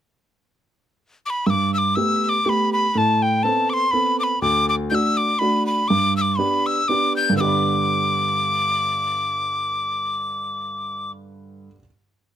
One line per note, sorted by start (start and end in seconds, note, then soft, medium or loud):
1.26 1.31 D6 medium
1.30 1.48 B5 medium
1.46 1.94 G2 medium
1.46 1.73 D6 medium
1.46 1.51 E6 medium
1.74 1.79 E6 medium
1.78 1.97 D6 medium
1.96 2.35 A3 soft
1.96 2.36 B3 soft
1.96 2.36 G4 soft
1.96 2.24 E6 medium
2.24 2.30 E6 medium
2.29 2.45 D6 medium
2.45 2.84 A3 soft
2.45 2.85 B3 soft
2.45 2.85 G4 medium
2.45 2.50 D6 medium
2.49 2.72 B5 medium
2.73 2.94 B5 medium
2.94 3.42 A2 medium
2.94 3.24 A5 medium
2.94 2.99 B5 medium
3.22 3.45 G5 medium
3.43 3.83 B3 soft
3.43 3.84 C4 soft
3.43 3.84 A4 soft
3.43 3.71 A5 medium
3.70 3.93 C6 medium
3.70 3.75 D6 medium
3.91 4.32 B3 soft
3.91 4.32 C4 soft
3.91 4.33 A4 soft
3.91 4.19 B5 medium
4.20 4.40 B5 medium
4.20 4.25 D6 medium
4.42 4.90 D2 medium
4.42 4.68 D6 medium
4.69 4.75 D6 medium
4.90 5.30 A3 soft
4.90 5.31 D4 soft
4.90 5.31 F#4 soft
4.90 4.96 G6 medium
4.95 5.19 E6 medium
5.17 5.40 D6 medium
5.39 5.80 A3 soft
5.39 5.80 D4 soft
5.39 5.81 F#4 soft
5.39 5.66 B5 medium
5.67 5.89 B5 medium
5.88 6.38 G2 medium
5.88 6.16 D6 loud
6.17 6.22 E6 medium
6.21 6.39 D6 medium
6.38 6.79 B3 soft
6.38 6.79 D4 soft
6.38 6.79 G4 soft
6.38 6.68 B5 medium
6.66 6.90 E6 medium
6.88 7.29 B3 soft
6.88 7.29 D4 soft
6.88 7.29 G4 soft
6.88 7.16 D6 medium
7.16 7.37 G6 medium
7.30 11.67 G2 medium
7.30 11.70 D3 soft
7.37 11.74 B3 soft
7.37 11.12 D6 medium
7.37 7.42 E6 medium
7.41 11.78 G4 soft
7.41 11.81 D5 soft
7.48 11.85 B5 soft